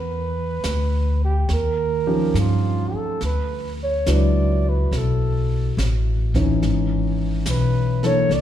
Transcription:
Already playing: upright bass E2, flugelhorn B4
0.64 upright bass D2, snare, hi-hat pedal
1.24 flugelhorn G4
1.49 upright bass D#2, brush sweep, snare
1.53 flugelhorn A#4
2.07 grand piano F3 C#4 D#4 G4
2.34 upright bass G2, snare, hi-hat pedal
2.39 flugelhorn F4
2.93 flugelhorn A4, muted upright bass stroke
3.21 upright bass D2, brush sweep, snare
3.25 flugelhorn B4
3.84 flugelhorn C#5
4.06 upright bass C#2, grand piano F#3 D4 E4 B4, snare, hi-hat pedal
4.12 flugelhorn D5
4.69 flugelhorn B4
4.91 upright bass B1, brush sweep, snare
4.97 flugelhorn A4
5.77 upright bass A1, snare, hi-hat pedal
6.34 grand piano E3 C#4 D#4 C#5, kick, snare
6.62 upright bass G#1, brush sweep, snare
7.46 upright bass B1, snare, hi-hat pedal
7.50 flugelhorn B4
8.03 grand piano E3 A#3 D4 A4, flugelhorn C#5, snare
8.29 upright bass C2, brush sweep, snare
8.34 flugelhorn D5

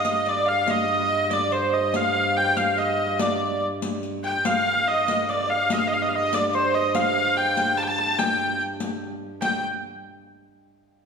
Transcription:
Already playing: viola da gamba G2, hurdy-gurdy D#5, harp F5 G5
0.05 harp D#5, riq
0.26 harp D5, hurdy-gurdy D5, riq
0.46 harp F5, hurdy-gurdy F5
0.61 harp F5
0.67 harp D#5, hurdy-gurdy D#5, riq
1.30 harp D5, hurdy-gurdy D5, riq
1.52 harp C5, hurdy-gurdy C5, riq
1.72 harp D#5, hurdy-gurdy D#5
1.94 harp F5, hurdy-gurdy F5, riq
2.16 harp F5
2.37 hurdy-gurdy G5, harp G5
2.57 hurdy-gurdy F5, harp F5, riq
2.77 harp D#5, hurdy-gurdy D#5, riq
3.12 harp D#5
3.19 harp D5, hurdy-gurdy D5, riq
3.82 riq
4.03 riq
4.24 harp G5, hurdy-gurdy G5, riq
4.45 viola da gamba G2, harp F5, hurdy-gurdy F5, riq
4.67 harp F5
4.88 hurdy-gurdy D#5, harp D#5
5.08 harp D#5, riq
5.29 harp D5, hurdy-gurdy D5, riq
5.33 harp D5
5.39 harp D5
5.49 harp F5, hurdy-gurdy F5
5.70 hurdy-gurdy D#5, riq
5.79 hurdy-gurdy F5
5.87 hurdy-gurdy D#5
5.94 hurdy-gurdy F5
6.02 hurdy-gurdy D#5
6.09 hurdy-gurdy F5
6.15 hurdy-gurdy D#5, harp D#5
6.33 harp D5, hurdy-gurdy D5, riq
6.49 hurdy-gurdy D5
6.53 harp C5, hurdy-gurdy C5, riq
6.74 hurdy-gurdy D#5, harp D#5
6.94 harp F5, hurdy-gurdy F5, riq
7.16 harp F5
7.37 harp G5, hurdy-gurdy G5
7.57 harp G5, riq
7.77 hurdy-gurdy A5, harp A5, riq
7.83 hurdy-gurdy G5
7.87 hurdy-gurdy A5, harp A5
7.98 harp A5, hurdy-gurdy A5
8.18 hurdy-gurdy G5, harp G5, riq
8.61 riq
8.80 riq
9.41 harp G5, hurdy-gurdy G5, riq

